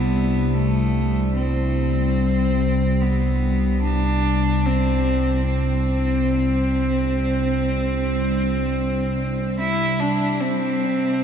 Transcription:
0.00 10.37 C2 medium
0.00 10.41 C3 medium
0.00 10.42 G3 medium
0.00 0.56 B3 medium
0.00 10.42 D4 medium
0.00 10.42 E4 medium
0.54 1.35 A3 medium
1.35 3.03 C4 medium
3.02 3.81 B3 medium
3.82 4.67 D4 medium
4.65 5.46 C4 medium
5.46 9.54 C4 medium
9.60 10.01 E4 loud
10.00 10.42 D4 loud
10.41 11.24 C3 medium
10.41 11.24 C4 medium
10.75 11.24 G3 medium
10.86 11.24 E4 medium

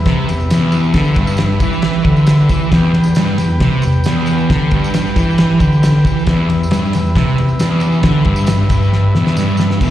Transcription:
0.00 2.68 G4 medium
0.00 2.69 B4 medium
0.00 2.69 E5 medium
0.06 0.28 C3 loud
0.06 kick medium
0.06 snare loud
0.06 ride medium
0.29 0.47 E2 medium
0.29 ride medium
0.29 tambourine medium
0.40 tambourine soft
0.50 0.95 E2 loud
0.50 snare loud
0.50 ride loud
0.50 tambourine medium
0.72 ride medium
0.72 tambourine medium
0.84 tambourine soft
0.94 1.16 D3 loud
0.94 kick medium
0.94 snare loud
0.94 ride medium
1.04 tambourine soft
1.14 1.61 G2 loud
1.14 kick loud
1.14 ride medium
1.14 tambourine soft
1.27 tambourine medium
1.37 snare loud
1.37 ride medium
1.37 tambourine medium
1.60 2.05 E3 loud
1.60 kick loud
1.60 ride medium
1.60 tambourine medium
1.73 tambourine soft
1.82 snare medium
1.82 ride medium
1.93 tambourine soft
2.05 2.49 D3 medium
2.05 kick medium
2.05 ride medium
2.17 tambourine soft
2.27 snare loud
2.27 ride medium
2.27 tambourine medium
2.40 tambourine soft
2.49 2.72 E3 medium
2.49 kick loud
2.49 ride medium
2.49 tambourine medium
2.62 tambourine soft
2.71 2.93 E2 loud
2.71 6.22 G4 medium
2.71 6.23 B4 medium
2.71 6.24 G5 medium
2.71 kick loud
2.71 snare loud
2.71 ride medium
2.94 3.12 E2 medium
2.94 ride medium
3.04 tambourine medium
3.15 3.38 G2 medium
3.15 snare loud
3.15 ride medium
3.15 tambourine loud
3.27 tambourine soft
3.38 3.57 E2 medium
3.38 ride medium
3.38 tambourine medium
3.50 tambourine soft
3.60 3.83 C3 loud
3.60 kick loud
3.60 snare loud
3.60 ride medium
3.82 4.02 E2 medium
3.82 ride medium
3.82 tambourine medium
3.92 tambourine soft
4.04 4.50 E2 loud
4.04 snare loud
4.04 ride loud
4.04 tambourine medium
4.26 ride medium
4.26 tambourine medium
4.38 tambourine soft
4.50 4.71 D3 loud
4.50 kick loud
4.50 snare loud
4.50 ride medium
4.71 5.15 G2 loud
4.71 kick loud
4.71 ride medium
4.84 tambourine medium
4.94 snare loud
4.94 ride loud
4.94 tambourine medium
5.07 tambourine soft
5.16 5.62 E3 loud
5.16 kick loud
5.16 ride medium
5.16 tambourine medium
5.30 tambourine soft
5.38 snare loud
5.38 ride medium
5.60 6.05 D3 medium
5.60 kick loud
5.60 ride medium
5.60 tambourine medium
5.73 tambourine soft
5.83 snare loud
5.83 ride medium
5.83 tambourine medium
6.05 6.27 E3 loud
6.05 kick loud
6.05 ride medium
6.05 tambourine medium
6.19 tambourine soft
6.25 6.49 E2 loud
6.25 9.77 G4 medium
6.25 9.79 B4 medium
6.25 kick loud
6.25 snare loud
6.25 ride medium
6.29 9.79 E5 medium
6.50 6.67 E2 medium
6.50 ride medium
6.63 tambourine medium
6.71 6.93 G2 loud
6.71 snare loud
6.71 ride medium
6.71 tambourine loud
6.85 tambourine soft
6.93 7.13 E2 medium
6.93 ride medium
6.93 tambourine medium
7.06 tambourine soft
7.15 7.37 C3 loud
7.15 kick loud
7.15 snare loud
7.15 ride medium
7.38 7.56 E2 medium
7.38 ride medium
7.49 tambourine soft
7.59 8.04 E2 loud
7.59 snare loud
7.59 ride loud
7.59 tambourine loud
7.80 ride medium
7.80 tambourine medium
7.92 tambourine soft
8.03 8.25 D3 loud
8.03 kick loud
8.03 snare loud
8.03 ride loud
8.25 8.68 G2 loud
8.25 kick loud
8.25 ride medium
8.36 tambourine medium
8.47 snare loud
8.47 ride loud
8.47 tambourine loud
8.69 9.14 G2 loud
8.69 kick loud
8.69 ride medium
8.69 tambourine medium
8.83 tambourine soft
8.93 snare medium
9.15 9.37 E2 medium
9.15 snare medium
9.26 snare medium
9.26 tambourine soft
9.37 9.82 G2 loud
9.37 snare medium
9.37 tambourine loud
9.49 tambourine soft
9.57 snare medium
9.57 tambourine medium
9.71 snare medium
9.80 9.90 E2 loud
9.80 9.90 B2 medium
9.80 9.90 E3 loud
9.80 9.90 G4 medium
9.80 9.90 B4 medium
9.80 kick loud
9.80 crash loud
9.85 9.90 E5 medium

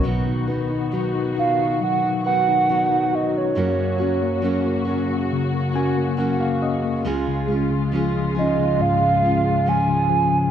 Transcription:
0.03 0.48 B2 medium
0.03 3.52 B2 medium
0.03 3.52 D#3 medium
0.03 0.48 F#3 medium
0.03 1.79 B3 soft
0.03 0.48 B3 medium
0.03 0.48 D#4 medium
0.03 3.52 F#4 soft
0.03 0.46 F#4 medium
0.27 0.69 D#4 soft
0.47 0.92 B3 soft
0.47 0.93 D#4 soft
0.47 0.92 F#4 soft
0.47 2.21 B4 soft
0.70 1.13 D#4 soft
0.92 1.36 F#3 soft
0.92 1.37 B3 soft
0.92 1.37 D#4 soft
0.92 1.35 F#4 soft
0.92 1.35 F#4 medium
1.15 1.57 D#4 soft
1.36 2.26 B3 soft
1.36 2.25 D#4 soft
1.36 2.24 F#4 soft
1.36 2.69 F#4 soft
1.36 1.79 F5 medium
1.59 2.03 D#4 soft
1.80 7.01 F#3 soft
1.80 3.52 F#3 soft
1.80 2.23 F#5 loud
2.04 2.47 D#4 soft
2.24 2.68 B3 soft
2.24 2.69 D#4 soft
2.24 2.68 F#4 soft
2.24 3.52 B4 soft
2.24 3.16 F#5 medium
2.48 2.90 D#4 soft
2.68 3.56 F#3 soft
2.68 3.56 B3 soft
2.68 3.57 D#4 soft
2.68 3.12 F#4 soft
2.68 3.57 F#4 soft
2.92 3.33 D#4 soft
3.13 3.55 F#4 soft
3.13 3.39 D#5 medium
3.34 3.55 D#4 soft
3.34 5.11 C#5 medium
3.54 3.99 F#2 medium
3.54 7.02 F#2 soft
3.54 10.51 C#3 soft
3.54 3.99 C#3 medium
3.54 4.00 F#3 medium
3.54 4.00 A#3 medium
3.54 3.99 C#4 medium
3.54 7.01 F#4 medium
3.54 3.97 F#4 medium
3.78 4.22 A#3 soft
3.98 4.41 F#3 soft
3.98 4.42 A#3 soft
3.98 4.43 C#4 soft
3.98 4.43 F#4 soft
3.98 5.71 F#4 soft
4.23 4.65 A#3 soft
4.42 4.86 F#3 medium
4.42 4.87 A#3 medium
4.42 4.86 C#4 soft
4.42 4.85 C#4 medium
4.42 4.84 F#4 medium
4.66 5.09 A#3 soft
4.85 5.75 F#3 soft
4.85 5.74 A#3 soft
4.85 5.74 C#4 soft
4.85 6.17 C#4 soft
4.85 5.72 F#4 soft
5.10 5.52 A#3 soft
5.32 7.02 C#3 soft
5.54 5.96 A#3 soft
5.73 6.16 F#3 soft
5.73 6.17 A#3 soft
5.73 6.18 C#4 soft
5.73 6.17 F#4 soft
5.73 7.02 F#4 soft
5.73 6.16 G#5 medium
5.97 6.39 A#3 soft
6.17 7.05 F#3 soft
6.17 7.06 A#3 medium
6.17 6.61 C#4 soft
6.17 7.06 C#4 soft
6.17 7.07 F#4 medium
6.17 6.39 F#5 medium
6.40 6.83 A#3 soft
6.40 6.61 F5 medium
6.62 7.04 C#4 soft
6.62 7.03 D#5 medium
6.84 7.05 A#3 soft
7.05 10.51 C#2 medium
7.05 7.49 C#3 medium
7.05 7.49 G#3 medium
7.05 10.51 G#3 medium
7.05 7.49 C#4 medium
7.05 7.48 F4 medium
7.05 10.51 F4 medium
7.05 7.47 G#4 medium
7.27 7.69 C#3 soft
7.48 9.19 G#3 soft
7.48 7.92 C#4 soft
7.48 7.93 F4 soft
7.48 7.92 G#4 soft
7.70 8.13 C#3 soft
7.92 8.35 F3 soft
7.92 8.36 G#3 medium
7.92 8.36 C#4 medium
7.92 8.35 F4 soft
7.92 8.33 G#4 medium
8.14 8.57 C#3 soft
8.35 9.65 F3 soft
8.35 9.24 C#4 soft
8.35 9.23 F4 soft
8.35 9.21 G#4 soft
8.35 8.83 D#5 medium
8.58 9.00 C#3 soft
8.80 10.51 G#2 soft
8.80 9.70 F5 loud
9.01 9.43 C#3 soft
9.22 10.51 G#3 soft
9.22 9.66 C#4 soft
9.22 9.67 F4 soft
9.22 9.67 G#4 soft
9.44 9.87 C#3 soft
9.66 10.09 F3 soft
9.66 10.51 G#3 soft
9.66 10.51 C#4 soft
9.66 10.51 F4 soft
9.66 10.51 G#4 soft
9.66 10.51 G#5 loud
9.88 10.32 C#3 soft
10.10 10.51 F3 soft
10.33 10.51 C#3 soft

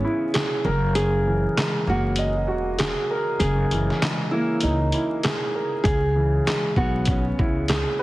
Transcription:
0.00 0.65 C#3 medium
0.00 0.65 E3 medium
0.00 0.65 G#3 medium
0.00 0.65 B3 loud
0.00 0.65 C#4 medium
0.00 0.32 G#4 loud
0.00 0.65 B4 medium
0.04 0.65 E4 medium
0.34 0.65 G#4 loud
0.34 snare loud
0.34 clap medium
0.34 closed hi-hat medium
0.65 1.45 F#1 loud
0.65 0.96 A#4 loud
0.95 3.40 C#3 medium
0.95 1.83 G#4 loud
0.95 closed hi-hat medium
1.27 3.70 E3 medium
1.56 4.01 G#3 medium
1.56 snare loud
1.56 clap medium
1.56 closed hi-hat medium
1.87 2.48 F#1 medium
1.87 4.32 A#3 loud
1.87 2.35 F#4 medium
2.16 4.63 D#5 medium
2.16 closed hi-hat medium
2.48 2.91 E1 medium
2.48 4.93 F#4 medium
2.79 5.22 G#4 loud
2.79 snare loud
2.79 clap medium
2.79 closed hi-hat medium
3.11 5.54 A#4 medium
3.39 3.67 F#1 loud
3.39 5.83 C#3 medium
3.39 4.28 G#4 loud
3.39 closed hi-hat medium
3.71 3.87 F#1 medium
3.71 5.86 E3 medium
3.71 closed hi-hat medium
3.90 snare soft
4.02 5.86 G#3 medium
4.02 snare loud
4.02 clap medium
4.02 closed hi-hat medium
4.31 5.86 A#3 loud
4.31 4.78 E4 medium
4.61 4.90 C#2 medium
4.61 5.86 D#4 medium
4.61 closed hi-hat medium
4.92 5.86 E4 medium
4.92 closed hi-hat medium
5.23 5.85 G#4 loud
5.23 snare loud
5.23 clap medium
5.23 closed hi-hat medium
5.55 5.86 A#4 medium
5.84 6.38 C#2 loud
5.84 8.03 C#3 medium
5.84 6.72 G#4 loud
5.84 kick loud
5.84 closed hi-hat medium
6.15 8.03 E3 medium
6.47 8.03 G#3 medium
6.47 snare loud
6.47 clap medium
6.47 closed hi-hat medium
6.76 7.30 B1 medium
6.76 8.03 B3 loud
6.76 7.23 F#4 medium
6.76 kick medium
7.05 8.03 C#4 medium
7.05 kick medium
7.05 closed hi-hat medium
7.39 7.82 C#2 medium
7.39 8.03 E4 medium
7.39 kick medium
7.68 8.03 G#4 loud
7.68 snare loud
7.68 clap medium
7.68 closed hi-hat medium
7.99 8.03 B4 medium

